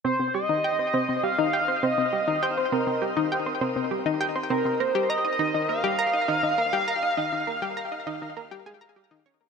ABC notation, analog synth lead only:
X:1
M:4/4
L:1/8
Q:1/4=101
K:Cm
V:1 name="Analog synth lead"
c e3 f2 e2 | c B2 z4 B | c e2 f4- f- | f6 z2 |]